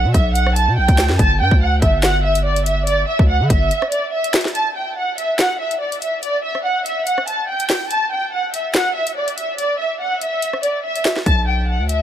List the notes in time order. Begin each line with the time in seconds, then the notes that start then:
Already playing: F#5
0.04 B2
0.14 B1 E5, kick, closed hi-hat
0.35 F#5, closed hi-hat
0.47 cross-stick
0.56 A5, closed hi-hat
0.67 B2
0.77 B1 G5
0.88 D2, kick, closed hi-hat
0.98 snare, clap, closed hi-hat
1.09 F#2, snare
1.19 G1 A5, kick, closed hi-hat
1.40 G2 G5
1.51 D2, kick
1.61 F#5
1.82 G1 E5, kick, closed hi-hat
2.03 F#5, snare, clap, closed hi-hat
2.24 E5
2.35 closed hi-hat
2.45 D5
2.56 closed hi-hat
2.66 E5, closed hi-hat
2.87 D5, closed hi-hat
3.08 E5
3.19 D2, kick
3.29 F#5
3.40 D3
3.50 G1 E5, kick, closed hi-hat
3.71 closed hi-hat
3.82 cross-stick
3.92 D5, closed hi-hat
4.13 E5
4.24 closed hi-hat
4.34 snare, clap, closed hi-hat
4.41 closed hi-hat
4.45 snare, closed hi-hat
4.55 A5, closed hi-hat
4.76 G5
4.97 F#5
5.18 E5, closed hi-hat
5.39 F#5, snare, clap, closed hi-hat
5.60 E5
5.71 closed hi-hat
5.81 D5
5.92 closed hi-hat
6.02 E5, closed hi-hat
6.23 D5, closed hi-hat
6.44 E5
6.55 cross-stick
6.65 F#5
6.86 E5, closed hi-hat
7.06 F#5, closed hi-hat
7.18 cross-stick
7.28 A5, closed hi-hat
7.49 G5
7.60 closed hi-hat
7.70 snare, clap, open hi-hat
7.91 A5, closed hi-hat
8.12 G5
8.33 F#5
8.54 E5, closed hi-hat
8.74 F#5, snare, clap, closed hi-hat
8.96 E5
9.07 closed hi-hat
9.17 D5
9.28 closed hi-hat
9.38 E5, closed hi-hat
9.58 D5, closed hi-hat
9.79 E5
10.00 F#5
10.21 E5, closed hi-hat
10.42 closed hi-hat
10.53 cross-stick
10.63 D5, closed hi-hat
10.84 E5
10.96 closed hi-hat
11.05 snare, clap, closed hi-hat
11.16 snare
11.26 B1 A5, kick, closed hi-hat
11.47 G5
11.68 F#5
11.79 D2
11.89 E5, closed hi-hat